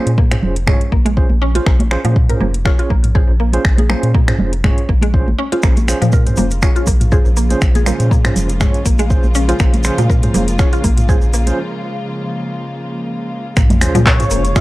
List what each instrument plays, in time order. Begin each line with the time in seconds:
Already playing: tine electric piano C#4 F4 G#4 C5
0.07 analog synth bass A#2, closed hi-hat
0.18 synth arpeggio sound A#3, kick
0.31 tine electric piano C#4 F4 G#4 C5, finger snap, closed hi-hat, mid tom, muted conga
0.43 analog synth bass F1, low conga
0.56 closed hi-hat
0.67 synth arpeggio sound G#3, tine electric piano C#4 F4 G#4 C#5, finger snap, kick, mid tom, muted conga
0.81 closed hi-hat
0.92 analog synth bass A#1, synth arpeggio sound A#3, kick
1.05 synth arpeggio sound G#3, closed hi-hat, muted conga, high conga
1.17 tine electric piano C#4 F4 G#4 C5, kick
1.30 analog synth bass A#1, high conga
1.42 synth arpeggio sound C#4
1.55 tine electric piano C#4 F4 G#4 C5, synth arpeggio sound F4, closed hi-hat, muted conga
1.66 analog synth bass A#1, synth arpeggio sound A#3, finger snap, kick
1.80 closed hi-hat, high conga
1.91 tine electric piano C#4 F4 G#4 C5, finger snap, muted conga
2.05 analog synth bass A#2, synth arpeggio sound F3, closed hi-hat, high conga
2.16 kick
2.29 tine electric piano C#4 F4 G#4 C5, synth arpeggio sound A#4, closed hi-hat, mid tom, muted conga
2.40 analog synth bass F1, synth arpeggio sound A#3, high conga, low conga
2.54 closed hi-hat
2.65 tine electric piano C#4 F4 G#4 C#5, synth arpeggio sound F4, finger snap, kick, muted conga
2.79 synth arpeggio sound F4, closed hi-hat
2.90 analog synth bass A#1, synth arpeggio sound A#3, kick, high conga, low conga
3.04 closed hi-hat, mid tom, muted conga
3.15 tine electric piano C#4 F4 G#4 C5, synth arpeggio sound G#4, kick
3.29 analog synth bass A#1
3.40 synth arpeggio sound A#3
3.53 tine electric piano C#4 F4 G#4 C5, closed hi-hat, muted conga
3.65 analog synth bass A#1, finger snap, kick
3.78 synth arpeggio sound G#4, closed hi-hat, high conga
3.89 synth arpeggio sound A#3, tine electric piano C#4 F4 G#4 C5, finger snap, muted conga, low conga
4.03 analog synth bass A#2, closed hi-hat
4.14 synth arpeggio sound A#3, kick
4.28 tine electric piano C#4 F4 G#4 C5, finger snap, closed hi-hat, mid tom, muted conga
4.38 analog synth bass F1, high conga, low conga
4.53 closed hi-hat
4.64 synth arpeggio sound G#3, tine electric piano C#4 F4 G#4 C#5, finger snap, kick, mid tom, muted conga, high conga
4.78 closed hi-hat
4.89 analog synth bass A#1, synth arpeggio sound A#3, kick
5.01 synth arpeggio sound G#3, closed hi-hat, muted conga, high conga
5.14 tine electric piano C#4 F4 G#4 C5, kick
5.27 analog synth bass G#1, high conga
5.38 synth arpeggio sound C#4
5.52 tine electric piano C#4 F4 G#4 C5, synth arpeggio sound F4, closed hi-hat, muted conga
5.63 analog synth bass A#1, string section C#3 F3 G#3 A#3 F4, synth arpeggio sound A#3, finger snap, kick, shaker
5.77 closed hi-hat, high conga, shaker
5.88 tine electric piano C#4 F4 G#4 C5, finger snap, open hi-hat, muted conga, shaker
6.02 analog synth bass A#2, synth arpeggio sound F3, closed hi-hat, high conga, shaker
6.12 synth arpeggio sound A#4, kick, shaker
6.27 tine electric piano C#4 F4 G#4 C5, closed hi-hat, mid tom, muted conga, shaker
6.37 analog synth bass F1, synth arpeggio sound A#3, open hi-hat, high conga, low conga, shaker
6.51 closed hi-hat, shaker
6.62 tine electric piano C#4 F4 G#4 C#5, synth arpeggio sound F4, finger snap, kick, muted conga, shaker
6.76 synth arpeggio sound F4, closed hi-hat, shaker
6.87 analog synth bass A#1, synth arpeggio sound A#3, kick, open hi-hat, high conga, low conga, shaker
7.01 closed hi-hat, mid tom, muted conga, shaker
7.12 tine electric piano C#4 F4 G#4 C5, synth arpeggio sound G#4, kick, shaker
7.25 analog synth bass A#1, shaker
7.37 synth arpeggio sound A#3, open hi-hat, shaker
7.50 tine electric piano C#4 F4 G#4 C5, closed hi-hat, muted conga, shaker
7.61 analog synth bass A#1, finger snap, kick, shaker
7.75 synth arpeggio sound G#4, closed hi-hat, high conga, shaker
7.86 synth arpeggio sound A#3, tine electric piano C#4 F4 G#4 C5, finger snap, open hi-hat, muted conga, low conga, shaker
8.00 analog synth bass A#2, closed hi-hat, shaker
8.11 synth arpeggio sound A#3, kick, shaker
8.25 tine electric piano C#4 F4 G#4 C5, finger snap, closed hi-hat, mid tom, muted conga, shaker
8.36 analog synth bass F1, open hi-hat, low conga, shaker
8.49 closed hi-hat, shaker
8.60 synth arpeggio sound G#3, tine electric piano C#4 F4 G#4 C#5, finger snap, kick, mid tom, muted conga, shaker
8.74 closed hi-hat, shaker
8.86 analog synth bass A#1, synth arpeggio sound A#3, kick, open hi-hat, shaker
8.99 synth arpeggio sound G#3, closed hi-hat, muted conga, high conga, shaker
9.10 tine electric piano C#4 F4 G#4 C5, kick, shaker
9.24 analog synth bass A#1, high conga, shaker
9.35 synth arpeggio sound C#4, open hi-hat, shaker
9.49 tine electric piano C#4 F4 G#4 C5, synth arpeggio sound F4, closed hi-hat, muted conga, shaker
9.59 analog synth bass A#1, synth arpeggio sound A#3, finger snap, kick, shaker
9.74 closed hi-hat, high conga, shaker
9.83 tine electric piano C#4 F4 G#4 C5, finger snap, open hi-hat, muted conga, shaker
9.98 analog synth bass A#2, synth arpeggio sound F3, closed hi-hat, high conga, shaker
10.10 synth arpeggio sound A#4, kick, shaker
10.23 tine electric piano C#4 F4 G#4 C5, closed hi-hat, mid tom, muted conga, shaker
10.34 analog synth bass F1, synth arpeggio sound A#3, open hi-hat, high conga, low conga, shaker
10.48 closed hi-hat, shaker
10.59 tine electric piano C#4 F4 G#4 C#5, synth arpeggio sound F4, finger snap, kick, muted conga, shaker
10.73 synth arpeggio sound F4, closed hi-hat, shaker
10.84 analog synth bass A#1, synth arpeggio sound A#3, kick, open hi-hat, high conga, low conga, shaker
10.97 closed hi-hat, mid tom, muted conga, shaker
11.09 tine electric piano C#4 F4 G#4 C5, synth arpeggio sound G#4, kick, shaker
11.22 analog synth bass A#1, shaker
11.33 synth arpeggio sound A#3, open hi-hat, shaker
11.47 tine electric piano C#4 F4 G#4 C5, closed hi-hat, muted conga, shaker
13.57 analog synth bass A#1, string section C#3 F3 G#3 A#3 F4, synth arpeggio sound A#3, finger snap, kick, sub drop, shaker
13.70 closed hi-hat, high conga, low conga, shaker
13.81 tine electric piano C#4 F4 G#4 C5, finger snap, open hi-hat, muted conga, shaker
13.95 analog synth bass A#2, synth arpeggio sound F3, closed hi-hat, high conga, low conga, shaker
14.06 synth arpeggio sound A#4, analog synth lead C#5, kick, clap, shaker
14.19 tine electric piano C#4 F4 G#4 C5, closed hi-hat, mid tom, muted conga, shaker
14.30 analog synth bass F1, synth arpeggio sound A#3, open hi-hat, shaker
14.45 closed hi-hat, shaker
14.56 tine electric piano C#4 F4 G#4 C#5, synth arpeggio sound F4, analog synth lead F5, finger snap, kick, muted conga, shaker